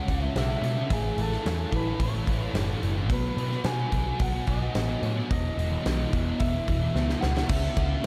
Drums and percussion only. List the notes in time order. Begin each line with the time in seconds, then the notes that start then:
0.08 kick, open hi-hat
0.36 snare, open hi-hat
0.64 snare, open hi-hat
0.90 kick, open hi-hat
1.18 open hi-hat
1.32 snare
1.46 snare, open hi-hat
1.72 kick, open hi-hat
2.00 kick, open hi-hat
2.27 kick, open hi-hat
2.55 snare, open hi-hat
2.83 open hi-hat
3.10 kick, open hi-hat
3.38 open hi-hat
3.51 snare
3.64 snare, open hi-hat
3.92 kick, open hi-hat
4.20 kick, open hi-hat
4.47 kick, open hi-hat
4.75 snare, open hi-hat
5.03 open hi-hat
5.31 kick, open hi-hat
5.59 open hi-hat
5.86 snare, open hi-hat
6.13 kick, open hi-hat
6.40 kick, open hi-hat
6.68 kick, open hi-hat
6.96 snare
7.09 snare
7.22 snare
7.37 snare
7.49 kick, crash
7.77 kick, ride